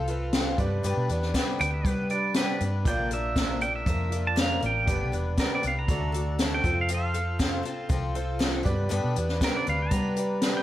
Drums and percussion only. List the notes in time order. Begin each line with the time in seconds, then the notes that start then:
0.07 closed hi-hat
0.33 snare, closed hi-hat
0.58 kick, closed hi-hat
0.84 closed hi-hat
1.09 closed hi-hat
1.22 snare
1.34 kick, snare, closed hi-hat
1.60 closed hi-hat
1.85 kick, closed hi-hat
2.10 closed hi-hat
2.34 snare, closed hi-hat
2.60 closed hi-hat
2.85 kick, closed hi-hat
3.11 closed hi-hat
3.36 kick, snare, closed hi-hat
3.61 closed hi-hat
3.86 kick, closed hi-hat
4.12 closed hi-hat
4.37 snare, closed hi-hat
4.62 closed hi-hat
4.87 kick, closed hi-hat
5.13 closed hi-hat
5.38 kick, snare, closed hi-hat
5.63 closed hi-hat
5.88 kick, closed hi-hat
6.14 closed hi-hat
6.39 snare, closed hi-hat
6.64 kick, closed hi-hat
6.88 closed hi-hat
7.14 closed hi-hat
7.39 kick, snare, closed hi-hat
7.65 closed hi-hat
7.89 kick, closed hi-hat
8.15 closed hi-hat
8.40 snare, closed hi-hat
8.66 kick, closed hi-hat
8.91 closed hi-hat
9.16 closed hi-hat
9.29 snare
9.41 kick, snare, closed hi-hat
9.67 closed hi-hat
9.91 kick, closed hi-hat
10.16 closed hi-hat
10.41 snare, closed hi-hat